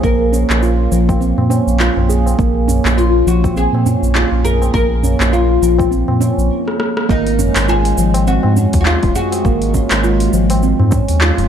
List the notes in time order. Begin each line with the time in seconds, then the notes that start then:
Already playing: A#3 F5
0.03 A#1 A#3 A#4, kick, cabasa
0.33 C#4, cabasa
0.50 A#1, clap, tabla tin, cabasa
0.63 F4, cabasa
0.91 A#1 F3, tabla tin, cabasa
1.09 kick, tabla na, cabasa
1.20 C4, cabasa
1.38 A#2, tabla na, tabla ge
1.50 C#4, tabla na, tabla tin, cabasa
1.67 A#1, cabasa
1.80 F4, clap, cabasa
1.97 A#1, tabla na, tabla ge
2.09 G#4, tabla tin, cabasa
2.26 tabla na, cabasa
2.39 A#1 A#3, kick, cabasa
2.68 C#4, tabla ge, cabasa
2.85 A#1, clap, tabla tin, cabasa
2.97 F4, cabasa
3.26 A#1 F3 F#4, tabla tin, cabasa
3.44 kick, tabla na, cabasa
3.56 C4 G#4, cabasa
3.73 A#2, tabla na, tabla tin
3.85 C#4, tabla ge, cabasa
4.02 A#1, cabasa
4.15 F4, clap, cabasa
4.32 A#1, tabla tin
4.44 G#4 A#4, tabla ge, cabasa
4.62 tabla na, cabasa
4.74 A#1 A#3 A#4, kick, cabasa
5.03 C#4, tabla ge, cabasa
5.19 A#1, clap, tabla tin, cabasa
5.33 F4, cabasa
5.62 A#1 F3, tabla tin, cabasa
5.78 kick, tabla na, cabasa
5.91 C4, cabasa
6.08 A#2, tabla na, tabla ge
6.20 C#4, tabla na, tabla tin, cabasa
6.38 A#1, cabasa
6.68 cross-stick
6.80 cross-stick
6.97 cross-stick
7.09 G#1 G#3 A#3 D#4, kick, cabasa
7.27 open hi-hat
7.39 C#4, tabla ge, cabasa
7.56 G#1, clap, open hi-hat, tabla tin, cabasa
7.68 F4 G#4, cabasa
7.85 open hi-hat
7.97 G#1 F3, tabla tin, cabasa
8.14 open hi-hat, tabla na, cabasa
8.27 C4 F#4, cabasa
8.43 G#2, tabla na, tabla tin
8.56 C#4, tabla ge, cabasa
8.73 D#2, kick, open hi-hat, cabasa
8.81 F#4
8.86 F4, clap, cabasa
9.03 D#1, kick, open hi-hat, tabla tin
9.15 F#4 G#4, tabla ge, cabasa
9.32 open hi-hat, tabla na, cabasa
9.45 G#1 A#3, kick, cabasa
9.62 open hi-hat
9.74 C#4, kick, cabasa
9.91 G#1, clap, open hi-hat, tabla tin, cabasa
10.04 F4, cabasa
10.20 open hi-hat
10.33 G#1 F3, tabla tin, cabasa
10.50 open hi-hat, tabla na, cabasa
10.63 C4, cabasa
10.80 G#2, tabla na, tabla ge
10.91 C#4, kick, tabla na, tabla tin, cabasa
11.08 D#2, open hi-hat, cabasa
11.21 F4, clap, cabasa
11.38 D#1, open hi-hat, tabla ge